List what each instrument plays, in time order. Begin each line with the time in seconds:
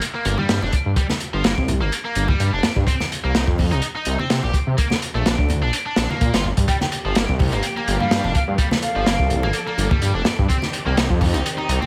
0.02 closed hi-hat
0.15 distorted electric guitar A#3
0.25 detuned saw bass G1, closed hi-hat
0.38 detuned saw bass G2, distorted electric guitar G3, high conga
0.49 detuned saw bass G2, snare, closed hi-hat
0.62 detuned saw bass F1, distorted electric guitar D4, low conga
0.73 kick, closed hi-hat
0.86 detuned saw bass G2
0.96 distorted electric guitar G3, kick, closed hi-hat
1.10 snare, high conga
1.20 closed hi-hat
1.34 detuned saw bass G1, distorted electric guitar F3
1.44 detuned saw bass G1, distorted electric guitar A#3, snare, closed hi-hat
1.58 detuned saw bass C2, kick
1.68 closed hi-hat, high conga, low conga
1.81 detuned saw bass G1, distorted electric guitar A#3
1.92 closed hi-hat
2.05 distorted electric guitar A#3
2.15 detuned saw bass G1, closed hi-hat
2.28 detuned saw bass G2, distorted electric guitar G3, kick, high conga
2.40 detuned saw bass G2, closed hi-hat
2.53 detuned saw bass F1, distorted electric guitar D4
2.63 snare, closed hi-hat, low conga
2.76 detuned saw bass G2, kick
2.87 distorted electric guitar C4, kick, closed hi-hat
3.00 snare, high conga
3.12 closed hi-hat
3.24 detuned saw bass C2, distorted electric guitar A#3
3.35 detuned saw bass C2, distorted electric guitar D#4, snare, closed hi-hat
3.47 detuned saw bass F2, kick
3.58 kick, open hi-hat, high conga, low conga
3.72 detuned saw bass C2, distorted electric guitar D#4, closed hi-hat
3.82 closed hi-hat
3.96 distorted electric guitar D#4
4.05 detuned saw bass C2, closed hi-hat
4.19 detuned saw bass C3, distorted electric guitar C4, high conga
4.30 detuned saw bass C3, snare, closed hi-hat
4.43 detuned saw bass A#1, distorted electric guitar G4, low conga
4.54 kick, closed hi-hat
4.67 detuned saw bass C3
4.78 distorted electric guitar A#3, kick, closed hi-hat
4.90 snare, high conga
5.02 closed hi-hat
5.15 detuned saw bass A#1, distorted electric guitar A3
5.25 detuned saw bass A#1, distorted electric guitar D4, snare, closed hi-hat
5.38 detuned saw bass D2, kick
5.49 closed hi-hat, high conga, low conga
5.62 detuned saw bass A#1, distorted electric guitar D4
5.73 closed hi-hat
5.86 distorted electric guitar D4
5.96 detuned saw bass A#1, snare, closed hi-hat
6.10 detuned saw bass A#2, distorted electric guitar A#3, high conga
6.21 detuned saw bass A#2, kick, closed hi-hat
6.34 detuned saw bass G1, distorted electric guitar F4, snare, closed hi-hat
6.44 low conga
6.57 detuned saw bass G2, kick, closed hi-hat
6.68 string section F3 A#3 G4 D5, distorted electric guitar G3, flute G5, kick, closed hi-hat
6.81 flute G5, snare, high conga
6.92 closed hi-hat
7.05 detuned saw bass G1, distorted electric guitar F3
7.15 detuned saw bass G1, distorted electric guitar A#3, snare, closed hi-hat
7.29 detuned saw bass C2, kick
7.39 kick, open hi-hat, high conga, low conga
7.52 detuned saw bass G1, distorted electric guitar A#3, closed hi-hat, muted conga
7.63 closed hi-hat
7.77 distorted electric guitar A#3, muted conga
7.88 detuned saw bass G1, closed hi-hat
8.00 detuned saw bass G2, distorted electric guitar G3, flute F5, high conga
8.11 detuned saw bass G2, snare, closed hi-hat
8.24 detuned saw bass F1, distorted electric guitar D4, low conga
8.35 flute F5, kick, closed hi-hat, muted conga
8.48 detuned saw bass G2, flute F5
8.58 distorted electric guitar G3, string section A4, kick, closed hi-hat
8.71 snare, high conga
8.82 flute F5, closed hi-hat
8.96 detuned saw bass G1, distorted electric guitar F3
9.06 detuned saw bass G1, distorted electric guitar A#3, snare, closed hi-hat
9.19 detuned saw bass C2, kick
9.30 closed hi-hat, high conga, low conga
9.43 detuned saw bass G1, distorted electric guitar A#3, muted conga
9.53 closed hi-hat
9.67 distorted electric guitar A#3, muted conga
9.78 detuned saw bass G1, closed hi-hat, muted conga
9.91 detuned saw bass G2, distorted electric guitar G3, kick, high conga
10.02 detuned saw bass G2, closed hi-hat
10.14 detuned saw bass F1, distorted electric guitar D4
10.25 snare, closed hi-hat, low conga
10.39 detuned saw bass G2, kick
10.49 string section D#3 C4 G4, distorted electric guitar C4, kick, closed hi-hat
10.62 snare, high conga
10.73 closed hi-hat
10.86 detuned saw bass C2, distorted electric guitar A#3
10.97 detuned saw bass C2, distorted electric guitar D#4, snare, closed hi-hat
11.10 detuned saw bass F2, kick
11.21 kick, open hi-hat, high conga, low conga
11.34 detuned saw bass C2, distorted electric guitar D#4, closed hi-hat, muted conga
11.46 closed hi-hat
11.58 distorted electric guitar D#4, muted conga
11.69 detuned saw bass C2, closed hi-hat
11.81 detuned saw bass C3, distorted electric guitar C4, high conga